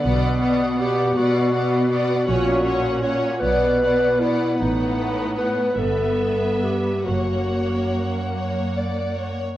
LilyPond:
<<
  \new Staff \with { instrumentName = "Violin section" } { \time 6/8 \key b \minor \tempo 4. = 51 fis''8 fis''8 fis''8 fis''8 fis''8 fis''8 | fis''8 fis''8 fis''8 fis''8 fis''8 fis''8 | fis''4. e''4. | fis''2~ fis''8. r16 | }
  \new Staff \with { instrumentName = "Violin section" } { \time 6/8 \key b \minor d''8 d''8 d''8 d''8 d''8 d''8 | cis''8 cis''8 cis''8 d''8 d''8 d''8 | b'4. b'4. | cis''4. cis''8 d''8 cis''8 | }
  \new Staff \with { instrumentName = "Clarinet" } { \time 6/8 \key b \minor b4 g'8 fis'4. | fis'4 cis''8 b'4 e'8 | dis'4 b'8 a'4 g'8 | fis'4. r4. | }
  \new Staff \with { instrumentName = "Viola section" } { \time 6/8 \key b \minor b8 b8 b8 b8 b8 b8 | cis'8 cis'8 cis'8 b8 b8 b8 | b4. b4. | ais2~ ais8. r16 | }
  \new Staff \with { instrumentName = "Cello section" } { \clef bass \time 6/8 \key b \minor b,4. b,4. | ais,4. b,4. | a,4. g,4. | fis,2~ fis,8. r16 | }
  \new Staff \with { instrumentName = "Double bass section" } { \clef bass \time 6/8 \key b \minor b,,4 r2 | ais,,4 r8 b,,4 r8 | a,,4 r8 g,,4 r8 | fis,,4 r2 | }
>>